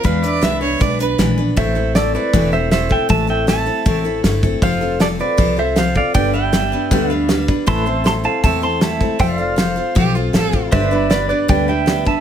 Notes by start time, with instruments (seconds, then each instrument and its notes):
0.03 upright bass E2, steel-string acoustic guitar E3 G#3 B3 D4 B4, pedal steel guitar B4 F5, fiddle B4, kick, closed hi-hat
0.23 steel-string acoustic guitar B3 D4 B4, fiddle D5, pedal steel guitar E5, closed hi-hat
0.41 upright bass C2, steel-string acoustic guitar E3 G#3 B3 D4 B4, fiddle E5, snare, closed hi-hat
0.61 steel-string acoustic guitar B3 D4 B4, fiddle C#5
0.79 upright bass B1, steel-string acoustic guitar G#3 B3 D4 B4, fiddle D5, kick, closed hi-hat
0.99 steel-string acoustic guitar B3 D4 B4, fiddle B4, closed hi-hat
1.18 upright bass A#1, steel-string acoustic guitar E3 G#3 B3 D4 B4, snare, closed hi-hat
1.38 steel-string acoustic guitar B3 D4 B4
1.56 upright bass A1, steel-string acoustic guitar A2 E3 A3 C4 E4 A4, pedal steel guitar C5 E5, kick, open hi-hat
1.75 steel-string acoustic guitar A3 C4 E4 A4
1.95 steel-string acoustic guitar A3 C4 E4 A4, pedal steel guitar A4 D5, snare, open hi-hat
2.15 steel-string acoustic guitar A3 C4 E4 A4, pedal steel guitar B4 D5
2.33 upright bass E1, steel-string acoustic guitar A2 E3 A3 C4 E4 A4, kick, open hi-hat
2.52 steel-string acoustic guitar A3 C4 E4 A4, pedal steel guitar C5 E5
2.71 steel-string acoustic guitar A3 C4 E4 A4, pedal steel guitar C5 E5, snare, open hi-hat
2.89 steel-string acoustic guitar A3 C4 E4 A4, pedal steel guitar E5 G5, kick
3.09 upright bass A1, steel-string acoustic guitar A2 E3 A3 C4 E4 A4, pedal steel guitar E5 A5, kick, open hi-hat
3.27 steel-string acoustic guitar A3 C4 E4 A4, pedal steel guitar E5 G5
3.47 steel-string acoustic guitar A3 C4 E4 A4, pedal steel guitar E5 A5, snare, open hi-hat
3.66 steel-string acoustic guitar A3 C4 E4 A4
3.86 upright bass A1, steel-string acoustic guitar A2 E3 A3 C4 E4 A4, kick, open hi-hat
4.05 steel-string acoustic guitar A3 C4 E4 A4
4.24 upright bass G1, steel-string acoustic guitar A3 C4 E4 A4, snare, open hi-hat
4.43 steel-string acoustic guitar A3 C4 E4 A4, kick
4.62 upright bass F1, steel-string acoustic guitar F3 C4 F4 A4, pedal steel guitar C5 F5, kick, open hi-hat
4.81 steel-string acoustic guitar C4 F4 A4
5.00 steel-string acoustic guitar F3 C4 F4 A4, pedal steel guitar A4 D5, snare, open hi-hat
5.19 steel-string acoustic guitar C4 F4 A4, pedal steel guitar B4 D5
5.38 upright bass C2, steel-string acoustic guitar F3 C4 F4 A4, kick, open hi-hat
5.56 steel-string acoustic guitar C4 F4 A4, pedal steel guitar C5 E5
5.76 steel-string acoustic guitar F3 C4 F4 A4, pedal steel guitar C5 F5, snare, open hi-hat
5.95 steel-string acoustic guitar C4 F4 A4, pedal steel guitar D5 F5, kick
6.14 upright bass G1, steel-string acoustic guitar G2 D3 G3 B3 D4 B4, pedal steel guitar D5 G5, kick, open hi-hat
6.33 steel-string acoustic guitar G3 B3 D4 B4, pedal steel guitar E5 G5
6.52 steel-string acoustic guitar G3 B3 D4 B4, snare, open hi-hat
6.72 steel-string acoustic guitar G3 B3 D4 B4
6.91 upright bass D2, steel-string acoustic guitar G2 D3 G3 B3 D4 B4, kick, open hi-hat
7.10 steel-string acoustic guitar G3 B3 D4 B4, pedal steel guitar F5
7.29 steel-string acoustic guitar G3 B3 D4 B4, snare, open hi-hat
7.48 steel-string acoustic guitar G3 B3 D4 B4, kick
7.66 upright bass A1, steel-string acoustic guitar A2 E3 A3 C4 E4 A4, pedal steel guitar B4 E5 A5 C6, kick, open hi-hat
7.86 steel-string acoustic guitar A3 C4 E4 A4, pedal steel guitar C5
8.04 steel-string acoustic guitar A3 C4 E4 A4, pedal steel guitar A5 C6, snare, open hi-hat
8.24 steel-string acoustic guitar A3 C4 E4 A4, pedal steel guitar F5 A5
8.44 upright bass E2, steel-string acoustic guitar A2 E3 A3 C4 E4 A4, pedal steel guitar E5 A5, kick, open hi-hat
8.62 steel-string acoustic guitar A3 C4 E4 A4, pedal steel guitar A5 C6
8.81 steel-string acoustic guitar A3 C4 E4 A4, pedal steel guitar E5 A5, snare, open hi-hat
9.00 steel-string acoustic guitar A3 C4 E4 A4, kick
9.19 upright bass F1, steel-string acoustic guitar F3 C4 F4 A4, pedal steel guitar C5 E5 G5, kick, open hi-hat
9.29 pedal steel guitar D5 F5
9.38 steel-string acoustic guitar C4 F4 A4, pedal steel guitar F5
9.56 steel-string acoustic guitar F3 C4 F4 A4, pedal steel guitar C5 F5, snare, open hi-hat
9.76 steel-string acoustic guitar C4 F4 A4
9.95 upright bass B1, steel-string acoustic guitar F3 C4 F4 A4, fiddle G4, kick, open hi-hat
10.15 steel-string acoustic guitar C4 F4 A4, fiddle F4
10.33 upright bass A1, steel-string acoustic guitar F3 C4 F4 A4, fiddle A4, snare, open hi-hat
10.53 steel-string acoustic guitar C4 F4 A4, kick
10.72 upright bass G1, steel-string acoustic guitar G2 D3 G3 B3 D4 B4, pedal steel guitar B4 C5 D5 E5, kick, open hi-hat
10.91 steel-string acoustic guitar G3 B3 D4 B4, pedal steel guitar B4
11.10 steel-string acoustic guitar G3 B3 D4 B4, pedal steel guitar B4 D5, snare, open hi-hat
11.29 steel-string acoustic guitar G3 B3 D4 B4, pedal steel guitar B4 D5
11.48 upright bass D2, steel-string acoustic guitar G2 D3 G3 B3 D4 B4, pedal steel guitar D5 G5, kick, open hi-hat
11.68 steel-string acoustic guitar G3 B3 D4 B4, pedal steel guitar E5 G5
11.86 steel-string acoustic guitar G3 B3 D4 B4, snare, open hi-hat
12.05 steel-string acoustic guitar G3 B3 D4 B4, pedal steel guitar E5 A5, kick